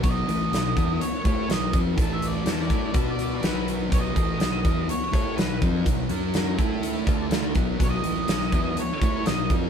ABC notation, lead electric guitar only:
X:1
M:4/4
L:1/16
Q:1/4=124
K:Bmix
V:1 name="Lead electric guitar"
d8 c2 c2 d2 z2 | a e =d d a d d d a d d d B2 z2 | d8 c2 c2 B2 z2 | z16 |
d8 c2 c2 d2 z2 |]